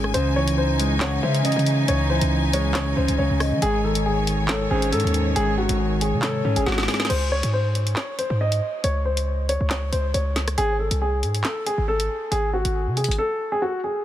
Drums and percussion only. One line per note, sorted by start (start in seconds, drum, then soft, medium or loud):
0.04 cross-stick medium
0.14 closed hi-hat medium
0.48 closed hi-hat medium
0.80 closed hi-hat medium
1.00 snare loud
1.00 clap loud
1.00 closed hi-hat medium
1.35 closed hi-hat medium
1.45 closed hi-hat medium
1.52 closed hi-hat soft
1.59 closed hi-hat soft
1.66 closed hi-hat medium
1.88 closed hi-hat medium
2.21 closed hi-hat medium
2.53 closed hi-hat medium
2.74 snare loud
2.74 clap loud
2.74 closed hi-hat medium
3.08 closed hi-hat medium
3.40 cross-stick medium
3.40 open hi-hat soft
3.62 closed hi-hat medium
3.95 closed hi-hat medium
4.27 closed hi-hat medium
4.48 snare loud
4.48 clap loud
4.48 closed hi-hat medium
4.82 closed hi-hat medium
4.93 closed hi-hat medium
5.00 closed hi-hat soft
5.07 closed hi-hat soft
5.14 closed hi-hat medium
5.36 closed hi-hat medium
5.69 closed hi-hat medium
6.01 closed hi-hat medium
6.22 snare loud
6.22 clap loud
6.22 closed hi-hat medium
6.56 closed hi-hat medium
6.66 snare medium
6.72 snare medium
6.78 snare medium
6.83 snare medium
6.88 snare medium
6.88 open hi-hat soft
6.94 snare medium
7.00 snare loud
7.05 snare loud
7.10 closed hi-hat medium
7.10 crash medium
7.43 closed hi-hat medium
7.75 closed hi-hat medium
7.87 closed hi-hat medium
7.96 snare loud
7.96 clap medium
7.96 closed hi-hat medium
8.19 closed hi-hat medium
8.52 closed hi-hat medium
8.84 closed hi-hat medium
9.17 closed hi-hat medium
9.49 closed hi-hat medium
9.70 snare loud
9.70 clap medium
9.70 closed hi-hat medium
9.93 closed hi-hat medium
10.14 closed hi-hat medium
10.36 snare medium
10.36 closed hi-hat medium
10.48 cross-stick medium
10.48 closed hi-hat medium
10.58 closed hi-hat medium
10.91 closed hi-hat medium
11.23 closed hi-hat medium
11.35 closed hi-hat medium
11.44 snare loud
11.44 clap medium
11.44 closed hi-hat medium
11.66 closed hi-hat medium
12.00 closed hi-hat medium
12.32 closed hi-hat medium
12.65 closed hi-hat medium
12.97 closed hi-hat soft
13.04 closed hi-hat medium
13.11 closed hi-hat medium